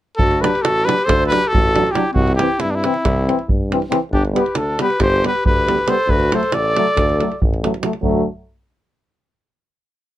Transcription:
0.17 tuba D2, clarinet F#4, trumpet A4, davul low
0.31 davul high
0.41 euphonium F#3, trombone D4, clarinet G4, trumpet B4, davul high
0.55 davul high
0.62 tuba A1, clarinet F#4, trumpet A4, davul high
0.85 euphonium F#3, trombone D4, clarinet G4, trumpet B4, davul high
0.98 davul high
1.05 tuba D2, clarinet A4, trumpet C5
1.09 davul high, davul low
1.27 trumpet B4
1.31 euphonium F#3, trombone D4, clarinet G4, davul high
1.44 davul high
1.48 clarinet F#4, trumpet A4
1.52 tuba A1, davul low
1.74 euphonium F#3, trombone D4, davul high
1.87 davul high
1.91 euphonium F#3, clarinet E4, trumpet G4
1.95 trombone D4, davul high
2.12 tuba C2, clarinet C4, trumpet F#4
2.16 davul low
2.28 davul high
2.36 euphonium E3, clarinet E4, trumpet G4, davul high
2.40 trombone C4
2.58 tuba G2, clarinet C4, trumpet E4, davul high
2.70 clarinet B3 C4, trumpet D4
2.75 trumpet E4
2.84 euphonium E3, trombone C4, davul high
2.94 davul high
3.05 tuba C2, davul high, davul low
3.28 euphonium E3, trombone C4, davul high
3.39 davul high
3.48 tuba G2, davul low
3.71 euphonium E3, trombone C4, davul high
3.82 davul high
3.90 euphonium E3, trombone C4, davul high
4.11 tuba G1, clarinet D4, trumpet G4, davul low
4.25 davul high
4.33 euphonium G3, trombone B3, clarinet G4, davul high
4.38 trumpet B4
4.46 davul high
4.55 tuba D2, clarinet D4, trumpet A4, davul high
4.79 euphonium G3, trombone B3, clarinet G4, trumpet B4, davul high
4.90 davul high
5.00 tuba G1, clarinet G4, trumpet C5, davul high, davul low
5.23 euphonium G3, trombone B3, clarinet G4, trumpet B4, davul high
5.35 davul high
5.45 tuba D2, clarinet G4, trumpet B4, davul low
5.67 euphonium G3, trombone B3, davul high
5.78 davul high
5.87 euphonium G3, trombone B3, clarinet A4, trumpet C5, davul high
6.07 tuba D2, clarinet F#4, trumpet B4, davul low
6.20 davul high
6.32 euphonium F#3, trombone A3, clarinet A4, trumpet C5, davul high
6.43 davul high
6.51 tuba A1, clarinet A4, trumpet D5, davul high
6.76 euphonium F#3, trombone A3, davul high
6.87 davul high
6.96 tuba D2, davul high, davul low
7.09 davul high
7.20 euphonium F#3, trombone A3, davul high
7.32 davul high
7.41 tuba A1, davul low
7.54 davul high
7.63 euphonium F#3, trombone A3, davul high
7.74 davul high
7.81 euphonium F#3, trombone A3, davul high
7.93 davul high
8.01 tuba D2, euphonium F#3, trombone A3, davul low

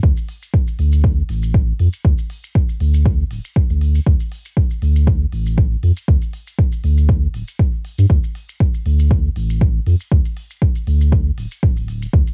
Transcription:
0.03 sub bass D2, kick
0.17 shaker
0.28 open hi-hat
0.42 shaker
0.54 kick
0.67 shaker
0.79 sub bass D2, open hi-hat
0.92 shaker
1.04 kick
1.29 sub bass A1, open hi-hat
1.43 shaker
1.54 kick
1.80 sub bass F2, open hi-hat
1.93 shaker
2.05 sub bass D2, kick
2.18 shaker
2.30 open hi-hat
2.44 shaker
2.55 kick
2.69 shaker
2.80 sub bass D2, open hi-hat
2.94 shaker
3.06 kick
3.31 sub bass D1, open hi-hat
3.44 shaker
3.56 kick
3.70 sub bass D2, shaker
3.81 open hi-hat
3.95 shaker
4.06 sub bass D2, kick
4.20 shaker
4.32 open hi-hat
4.45 shaker
4.57 kick
4.71 shaker
4.82 sub bass D2, open hi-hat
4.96 shaker
5.07 kick
5.32 sub bass A1, open hi-hat
5.46 shaker
5.58 kick
5.83 sub bass F2, open hi-hat
5.97 shaker
6.08 sub bass D2, kick
6.22 shaker
6.33 open hi-hat
6.47 shaker
6.59 kick
6.72 shaker
6.84 sub bass D2, open hi-hat
6.97 shaker
7.09 kick
7.34 sub bass D1, open hi-hat
7.48 shaker
7.59 kick
7.85 open hi-hat
7.98 sub bass G2, shaker
8.10 sub bass D2, kick
8.24 shaker
8.35 open hi-hat
8.49 shaker
8.60 kick
8.74 shaker
8.86 sub bass D2, open hi-hat
8.99 shaker
9.11 kick
9.36 sub bass A1, open hi-hat
9.50 shaker
9.61 kick
9.86 sub bass F2, open hi-hat
10.00 shaker
10.12 sub bass D2, kick
10.25 shaker
10.37 open hi-hat
10.50 shaker
10.62 kick
10.76 shaker
10.87 sub bass D2, open hi-hat
11.01 shaker
11.12 kick
11.38 sub bass D1, open hi-hat
11.51 shaker
11.63 sub bass D1, kick
11.77 open hi-hat, shaker
11.88 open hi-hat
12.02 shaker
12.13 sub bass D2, kick
12.27 shaker

